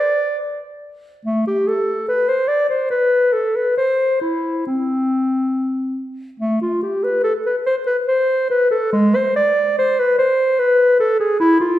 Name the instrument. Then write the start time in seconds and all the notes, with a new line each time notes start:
clarinet
0.00 D5
1.25 A3
1.47 G4
1.68 A4
2.08 B4
2.28 C5
2.48 D5
2.70 C5
2.90 B4
3.33 A4
3.56 B4
3.77 C5
4.21 E4
4.67 C4
6.40 A3
6.61 F4
6.83 G4
7.04 B4
7.23 A4
7.46 B4
7.66 C5
7.87 B4
8.08 C5
8.50 B4
8.71 A4
8.93 G#3
9.15 C5
9.36 D5
9.79 C5
9.99 B4
10.19 C5
10.59 B4
11.00 A4
11.20 G#4
11.40 E4
11.60 F4